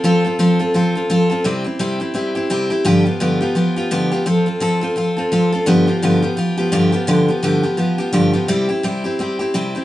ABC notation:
X:1
M:4/4
L:1/8
Q:"Swing" 1/4=170
K:C
V:1 name="Steel-string acoustic guitar"
[F,CFA] [CFA] [F,CFA] [CFA] [F,CFA] [CFA] [F,CFA] [CFA] | [C,G,CEG] [CEG] [C,G,CEG] [CEG] [G,CEG] [CEG] [C,G,CEG] [CEG] | [G,,D,F,B,FG] [F,B,FG] [G,,D,F,B,FG] [F,B,FG] [F,B,FG] [F,B,FG] [G,,D,F,B,FG] [F,B,FG] | [F,CFA] [CFA] [F,CFA] [CFA] [F,CFA] [CFA] [F,CFA] [CFA] |
[G,,D,F,B,FG] [F,B,FG] [G,,D,F,B,FG] [F,B,FG] [F,B,FG] [F,B,FG] [G,,D,F,B,FG] [F,B,FG] | [G,,D,F,B,FG] [F,B,FG] [G,,D,F,B,FG] [F,B,FG] [F,B,FG] [F,B,FG] [G,,D,F,B,FG] [F,B,FG] | [C,G,CEG] [CEG] [C,G,CEG] [CEG] [G,CEG] [CEG] [C,G,CEG] [CEG] |]